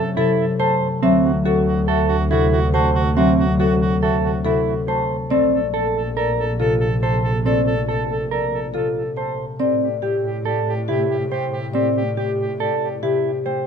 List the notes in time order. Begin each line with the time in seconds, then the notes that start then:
Already playing: F#2 C3 F#3 A3 C4 A4
0.17 C3 E4 A4
0.39 A4
0.60 A3 A4 C5 A5
1.02 D2 F#3 C4 F#4 E5
1.24 F#4
1.45 C4 F#4 A4
1.66 F#4
1.88 F#4 A4 E5
2.08 F#4
2.31 C3 E4 F#4 A4
2.53 F#4
2.74 A3 F#4 C5 A5
2.95 F#4
3.17 F#3 C4 F#4 E5
3.39 F#4
3.60 C4 F#4 A4
3.82 F#4
4.02 F#4 A4 E5
4.23 F#4
4.45 C3 E4 F#4 A4
4.67 F#4
4.88 A3 F#4 C5 A5
5.30 A#1 A3 C4 A4 D5
5.53 A4
5.74 C4 A4
5.95 A4
6.17 A4 A#4 D5
6.38 A4
6.59 C3 F4 A4
6.80 A4
7.01 A#3 A4 C5 A5
7.24 A4
7.46 A3 C4 A4 D5
7.67 A4
7.89 C4 A4
8.10 A4
8.31 A4 A#4 D5
8.53 A4
8.74 C3 F4 A4
8.96 A4
9.17 A#3 A4 C5 A5
9.59 A2 C4 G4 D5
9.81 G4
10.02 C4 G4
10.24 G4
10.45 G4 A4 D5
10.67 G4
10.88 C3 E4 G4
11.09 G4
11.31 A3 G4 C5 G5
11.53 G4
11.74 C4 G4 D5
11.96 G4
12.17 C4 G4
12.39 G4
12.60 G4 A4 D5
12.82 G4
13.03 C3 E4 G4
13.25 G4
13.46 A3 G4 C5 G5